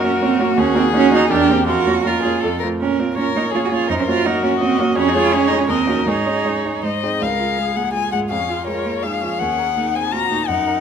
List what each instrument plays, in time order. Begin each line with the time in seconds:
Already playing: grand piano F#2 A#3 C#4 F#4, violin F#4, viola A#4
0.04 grand piano A#3 C#4 F#4, cello C#4
0.22 grand piano A#3 C#4 F#4, cello C4
0.39 grand piano A#3 C#4 F#4, cello A#3
0.57 grand piano D#2, cello C#4, viola F#4, violin G#4
0.75 grand piano A#3 D#4 F#4, cello C4
0.93 grand piano A#3 D#4 F#4, cello C#4, viola F#4
1.11 grand piano A#3 D#4 F#4, cello D#4
1.29 grand piano E2, cello D4, violin G4, viola A#4
1.48 grand piano A#3 C4 G4, cello C4
1.67 grand piano F2, violin F4, cello F#4, viola A#4
1.86 grand piano A#3 C#4 F4
2.04 grand piano A#3 C#4 F4, cello F4, violin A#4, viola A#4
2.23 grand piano A#3 C#4 F4, violin G#4
2.40 grand piano F2, violin A4, viola A4
2.59 grand piano A3 C4 F4, violin A#4
2.80 grand piano A#2, cello C#4, viola A#4
2.99 grand piano A#3 C#4 F4, cello C4
3.14 grand piano A#3 C#4 F4, cello C#4, violin A#4, viola C#5
3.35 grand piano A#3 C#4 F4, cello D#4
3.51 grand piano A#3 C#4 F4, cello F4, violin G#4
3.65 cello F#4
3.72 grand piano A#3 C#4 F4, cello F4
3.88 grand piano F#2, cello D#4, violin A#4, viola C5
4.00 cello C#4
4.08 grand piano A#3 C#4 F#4, cello F4
4.24 grand piano A#3 C#4 F#4, cello D#4, violin F#4, viola A#4
4.43 grand piano A#3 C#4 F#4, cello C#4
4.59 grand piano A#3 C#4 F#4, cello C4, viola D#5
4.79 grand piano A#3 C#4 F#4, cello A#3
4.96 grand piano F2, cello C#4, violin G#4, viola C#5
5.08 cello D#4
5.14 grand piano G#3 C#4 G#4, cello F4
5.32 grand piano G#3 C#4 G#4, cello C#4
5.47 grand piano G#3 C#4 G#4, cello D#4
5.59 cello C#4
5.68 grand piano D#2, cello C4, violin A#4, viola D#5
5.87 grand piano A#3 D#4 F#4, cello C#4
6.06 grand piano G#2, cello D#4, violin G#4, viola C#5
6.26 grand piano G#3 C#4 D#4
6.44 grand piano G#3 C#4 D#4
6.65 grand piano G#3 C#4 D#4
6.83 grand piano G#2, viola C5, violin D#5
7.03 grand piano G#3 C4 D#4
7.21 grand piano C#2, viola G#4, cello A#4, violin F5
7.39 grand piano F4
7.58 grand piano G#3, cello G#4
7.76 grand piano A#3, violin F#5
7.93 grand piano G#3, cello F4, violin G#5
8.12 grand piano G#2, violin F#5
8.29 grand piano F2, viola C#4, cello G#4, violin F5
8.49 grand piano F4, viola F4
8.67 grand piano G#3, cello A#4, violin C#5
8.85 grand piano A#3
9.02 grand piano G#3, viola D#4, cello G#4, violin F5
9.21 grand piano F3, viola C#4
9.39 grand piano D#2, viola C#4, violin F#5
9.58 grand piano A#4
9.75 grand piano A#3, viola D#4
9.94 grand piano C4, violin G#5
10.12 grand piano A#3, viola F4, cello F#4, violin A#5
10.30 grand piano A#2, viola D#4
10.47 grand piano F#2, viola D#4, cello D#4, violin F#5
10.67 grand piano A#4